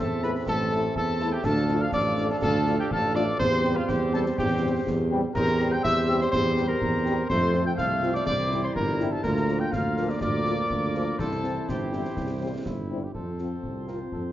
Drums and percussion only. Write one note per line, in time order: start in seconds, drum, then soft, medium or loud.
0.23 snare medium
0.35 snare medium
0.47 concert bass drum medium
0.47 snare medium
0.71 snare soft
0.96 concert bass drum medium
1.20 snare soft
1.44 concert bass drum medium
1.44 snare medium
1.44 crash soft
1.56 snare medium
1.68 snare soft
1.92 concert bass drum medium
1.92 snare medium
2.18 snare medium
2.30 snare medium
2.42 concert bass drum medium
2.42 snare medium
2.67 snare medium
2.91 concert bass drum medium
3.15 snare medium
3.40 concert bass drum medium
3.40 snare medium
3.52 snare medium
3.64 snare medium
3.89 concert bass drum medium
3.89 snare medium
4.13 snare medium
4.26 snare medium
4.38 concert bass drum medium
4.38 snare medium
4.87 concert bass drum medium
4.87 snare medium
5.35 concert bass drum medium
5.35 snare medium
5.35 crash medium
5.48 snare medium
5.60 snare soft
5.85 concert bass drum medium
5.85 snare medium
6.09 snare medium
6.21 snare medium
6.33 concert bass drum medium
6.33 snare medium
6.57 snare medium
6.81 concert bass drum medium
7.06 snare medium
7.30 concert bass drum medium
7.30 snare medium
7.42 snare medium
7.54 snare medium
7.78 concert bass drum medium
7.78 snare medium
8.03 snare medium
8.15 snare medium
8.27 concert bass drum medium
8.27 snare medium
8.51 snare medium
8.76 concert bass drum medium
9.00 snare medium
9.24 concert bass drum medium
9.24 snare medium
9.24 crash soft
9.37 snare medium
9.48 snare medium
9.73 concert bass drum medium
9.73 snare medium
9.97 snare soft
10.09 snare soft
10.21 concert bass drum medium
10.21 snare medium
10.46 snare soft
10.70 concert bass drum medium
10.95 snare soft
11.19 concert bass drum medium
11.19 snare medium
11.31 snare medium
11.44 snare soft
11.69 concert bass drum medium
11.69 snare medium
11.93 snare soft
12.05 snare medium
12.17 concert bass drum medium
12.17 snare medium
12.66 concert bass drum medium
12.66 snare medium
13.14 concert bass drum medium
13.38 snare soft
13.63 concert bass drum medium
13.88 snare soft
14.12 concert bass drum medium